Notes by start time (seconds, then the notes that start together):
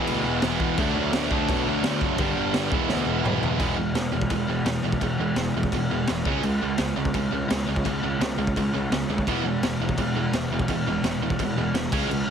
Already playing: E2 B2 E3 G#3 B3 E4
0.07 D2, crash
0.25 E1
0.42 E1 E2 B2 E3 G#3 B3 E4, snare, crash
0.60 E1, kick
0.76 D2 D3 F#3 A3 D4, kick, crash
0.81 D4
0.96 D2
1.13 D2, snare, crash
1.30 D2 D3 F#3 A3 D4, kick
1.49 B2, kick, crash
1.66 D2
1.83 D2, snare, crash
2.01 F#1, kick
2.18 G1 G2 D3 G3 B3, kick, crash
2.22 D4
2.36 G1
2.53 G1, snare, crash
2.71 E1 E2 B2 E3 G#3 B3 E4, kick
2.89 D2, snare
3.06 E1
3.24 E1 E2 B2 E3 G#3 B3 E4, mid tom
3.41 E1, floor tom
3.59 E1 E2 B2 E3 G#3 B3, kick, crash
3.77 E1 E2 B2 E3 G#3
3.94 E1 E2 B2 E3 G#3, snare, crash
4.12 E1 E2 B2 E3 G#3
4.21 kick
4.30 E1 E2 B2 E3 G#3, kick, crash
4.47 E1 E2 B2 E3 G#3
4.65 E1 E2 B2 E3 G#3, snare, crash
4.83 E1 E2 B2 E3 G#3
4.92 kick
5.01 E1 E2 B2 E3 G#3, kick, crash
5.18 E1 E2 B2 E3 G#3
5.36 E1 E2 B2 E3 G#3, snare, crash
5.54 E1 E2 B2 E3 G#3
5.63 kick
5.72 E1 E2 B2 E3 G#3, kick, crash
5.90 E1 E2 B2 E3 G#3
6.07 E1 E2 B2 E3 G#3, snare, crash
6.25 C#2 C#3 G#3 C#4, kick
6.43 C#2 C#3 G#3, crash
6.62 C#2 C#3 G#3
6.78 C#2 C#3 G#3, snare, crash
6.96 C#2 C#3 G#3
7.05 kick
7.14 C#2 C#3 G#3, kick, crash
7.31 C#2 C#3 G#3
7.48 C#2 C#3 G#3, snare, crash
7.66 C#2 C#3 G#3
7.76 kick
7.84 C#2 C#3 G#3, kick, crash
8.03 C#2 C#3 G#3
8.20 C#2 C#3 G#3, snare, crash
8.38 C#2 C#3 G#3
8.47 kick
8.56 C#2 C#3 G#3, kick, crash
8.74 C#2 C#3 G#3
8.91 C#2 C#3 G#3, snare, crash
9.09 D2 C#3 G#3
9.18 kick
9.27 E1 E2 B2 E3 G#3 B3, kick, crash
9.43 E1 E2 B2 E3 G#3
9.62 E1 E2 B2 E3 G#3, snare, crash
9.80 E1 E2 B2 E3 G#3
9.89 kick
9.98 E1 E2 B2 E3 G#3, kick, crash
10.14 E1 E2 B2 E3 G#3
10.32 E1 E2 B2 E3 G#3, snare, crash
10.50 E1 E2 B2 E3 G#3
10.59 kick
10.68 E1 E2 B2 E3 G#3, kick, crash
10.86 E1 E2 B2 E3 G#3
11.03 E1 E2 B2 E3 G#3, snare, crash
11.20 E1 E2 B2 E3 G#3
11.30 kick
11.39 E1 E2 B2 E3 G#3, kick, crash
11.56 E1 E2 E3 G#3
11.60 B2
11.73 E1 E2 B2 E3 G#3, snare, crash
11.92 C#2 C#3 G#3 C#4, kick, crash
12.08 C#2 C#3 G#3, crash
12.27 C#2